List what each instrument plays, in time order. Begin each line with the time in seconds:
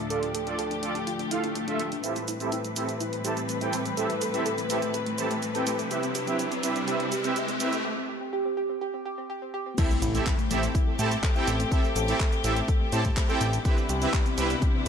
Already playing: string section D2 A2 F3 D4
0.10 supersaw synth F4 A4 D5, string section G4, synth pluck A4, closed hi-hat
0.23 synth pluck D4, closed hi-hat
0.35 synth pluck A4, closed hi-hat
0.47 synth pluck D4, supersaw synth F4 A4 D5, closed hi-hat
0.59 synth pluck A4, closed hi-hat
0.71 synth pluck D4, closed hi-hat
0.83 synth pluck D4, supersaw synth F4 A4 D5, closed hi-hat
0.95 synth pluck D4, closed hi-hat
1.07 synth pluck F4, closed hi-hat, swell
1.19 synth pluck D4, closed hi-hat
1.31 synth pluck E4, supersaw synth F4 A4 F5, closed hi-hat
1.44 synth pluck D4, closed hi-hat
1.55 synth pluck D4, closed hi-hat
1.68 synth pluck D4, supersaw synth F4 A4 E5, closed hi-hat
1.80 synth pluck D4, closed hi-hat
1.92 synth pluck D4, closed hi-hat
2.04 string section A2 E3 G3 C4 B4, supersaw synth C4 E4 G4 A4 E5, synth pluck E4, closed hi-hat, riser, shaker
2.16 synth pluck A3, closed hi-hat, shaker
2.28 synth pluck E4, open hi-hat, shaker
2.40 synth pluck A3, supersaw synth C4 E4 G4 A4 E5, closed hi-hat, shaker
2.52 synth pluck E4, closed hi-hat, shaker
2.65 synth pluck A3, closed hi-hat, shaker
2.76 synth pluck A3, supersaw synth C4 E4 G4 A4 E5, open hi-hat, shaker
2.89 synth pluck A3, closed hi-hat, shaker
3.00 synth pluck E4, closed hi-hat, shaker
3.13 synth pluck A3, closed hi-hat
3.25 supersaw synth C4 E4 G4 A4 A5, synth pluck G4, open hi-hat, shaker
3.37 synth pluck A3, closed hi-hat, shaker
3.49 synth pluck A3, closed hi-hat, shaker
3.61 supersaw synth C4 E4 G4 A4 G5, synth pluck E4, closed hi-hat, shaker
3.73 synth pluck A3, open hi-hat, shaker
3.85 synth pluck A3, closed hi-hat, shaker
3.97 supersaw synth C4 E4 G4 A4 E5, synth pluck A4, closed hi-hat, shaker
4.10 synth pluck A3, closed hi-hat, shaker
4.21 synth pluck A4, open hi-hat, shaker
4.34 synth pluck A3, supersaw synth C4 E4 G4 A4 E5, closed hi-hat, shaker
4.46 synth pluck A4, closed hi-hat, shaker
4.58 synth pluck A3, closed hi-hat, shaker
4.70 synth pluck A3, supersaw synth C4 E4 G4 A4 E5, open hi-hat, shaker
4.82 synth pluck A3, closed hi-hat, shaker
4.94 synth pluck A4, closed hi-hat, shaker
5.06 synth pluck A3, closed hi-hat
5.18 supersaw synth C4 E4 G4 A4 A5, synth pluck C5, open hi-hat, shaker
5.31 synth pluck A3, closed hi-hat, shaker
5.42 synth pluck A3, closed hi-hat, shaker
5.55 supersaw synth C4 E4 G4 A4 G5, synth pluck A4, closed hi-hat, shaker
5.67 synth pluck A3, open hi-hat, shaker
5.79 synth pluck A3, closed hi-hat, shaker
5.91 string section C3 D4 E4, supersaw synth C4 E4 G4 B4 E5, synth pluck G4, closed hi-hat, shaker
6.03 synth pluck C4, closed hi-hat, shaker
6.15 synth pluck G4, open hi-hat, shaker
6.27 synth pluck C4, supersaw synth C4 E4 G4 B4 E5, closed hi-hat, shaker
6.39 synth pluck G4, closed hi-hat, shaker
6.52 synth pluck C4, closed hi-hat, shaker
6.63 supersaw synth C4 E4 G4 B4 E5, synth pluck C4, open hi-hat, shaker
6.76 synth pluck C4, closed hi-hat, shaker
6.88 supersaw synth C4 E4 G4 B4 E5, synth pluck G4, closed hi-hat, shaker
7.00 synth pluck C4, closed hi-hat
7.12 synth pluck G4, open hi-hat, shaker
7.24 supersaw synth C4 E4 G4 B4 E5, synth pluck C4, closed hi-hat, shaker
7.36 synth pluck G4, closed hi-hat, shaker
7.48 synth pluck C4, closed hi-hat, shaker
7.60 supersaw synth C4 E4 G4 B4 E5, synth pluck C4, open hi-hat, shaker
7.73 synth pluck C4, closed hi-hat, shaker
7.84 synth pluck G4
7.97 synth pluck C4
8.09 synth pluck G4
8.21 synth pluck C4
8.33 synth pluck G4
8.45 synth pluck C4
8.57 synth pluck G4
8.69 synth pluck C4
8.81 synth pluck G4
8.94 synth pluck C4
9.05 synth pluck G4
9.18 synth pluck C4
9.30 synth pluck G4
9.42 synth pluck C4
9.54 synth pluck G4
9.66 synth pluck C4
9.78 string section A3 C4 G4, supersaw synth C4 E4 G4 A4 E5, synth pluck E4, kick, closed hi-hat, crash, impact, shaker
9.90 synth pluck A3, shaker
10.02 analog synth bass A1, synth pluck E4, open hi-hat, shaker
10.15 synth pluck A3, supersaw synth C4 E4 G4 A4 E5, closed hi-hat, shaker
10.26 synth pluck E4, kick, clap, closed hi-hat, shaker
10.39 synth pluck A3, closed hi-hat, shaker
10.51 analog synth bass A1, synth pluck A3, supersaw synth C4 E4 G4 A4 E5, open hi-hat, shaker
10.63 synth pluck A3, closed hi-hat, shaker
10.75 synth pluck E4, kick, closed hi-hat, shaker
10.87 synth pluck A3
10.99 analog synth bass A2, supersaw synth C4 E4 G4 A4 A5, synth pluck G4, open hi-hat, shaker
11.11 synth pluck A3, closed hi-hat, shaker
11.23 synth pluck A3, kick, clap, closed hi-hat, shaker
11.36 supersaw synth C4 E4 G4 A4 G5, synth pluck E4, shaker
11.47 analog synth bass A1, synth pluck A3, open hi-hat, shaker
11.60 synth pluck A3, closed hi-hat, shaker
11.72 supersaw synth C4 E4 G4 A4 E5, synth pluck A4, kick, closed hi-hat, shaker
11.84 synth pluck A3, shaker
11.96 analog synth bass A1, synth pluck A4, open hi-hat, shaker
12.08 synth pluck A3, supersaw synth C4 E4 G4 A4 E5, closed hi-hat, shaker
12.20 synth pluck A4, kick, clap, closed hi-hat, shaker
12.32 synth pluck A3, closed hi-hat, shaker
12.44 analog synth bass A1, synth pluck A3, supersaw synth C4 E4 G4 A4 E5, open hi-hat, shaker
12.56 synth pluck A3, closed hi-hat, shaker
12.68 synth pluck A4, kick, closed hi-hat, shaker
12.81 synth pluck A3
12.92 analog synth bass A2, supersaw synth C4 E4 G4 A4 A5, synth pluck C5, open hi-hat, shaker
13.05 synth pluck A3, kick, closed hi-hat, shaker
13.17 synth pluck A3, kick, clap, closed hi-hat, shaker
13.29 supersaw synth C4 E4 G4 A4 G5, synth pluck A4, shaker
13.41 analog synth bass A1, synth pluck A3, open hi-hat, shaker
13.53 synth pluck A3, closed hi-hat, shaker
13.65 string section C3 G3 B3 D4 E4, supersaw synth C4 E4 G4 B4 E5, synth pluck G4, kick, closed hi-hat, shaker
13.78 synth pluck C4, shaker
13.89 analog synth bass C2, synth pluck G4, open hi-hat, shaker
14.02 supersaw synth C4 E4 G4 B4 E5, synth pluck C4, closed hi-hat, shaker
14.13 synth pluck G4, kick, clap, closed hi-hat, shaker
14.26 synth pluck C4, closed hi-hat, shaker
14.38 analog synth bass C2, supersaw synth C4 E4 G4 B4 E5, synth pluck C4, open hi-hat, shaker
14.50 synth pluck C4, closed hi-hat, shaker
14.62 synth pluck G4, kick, closed hi-hat, shaker
14.74 synth pluck C4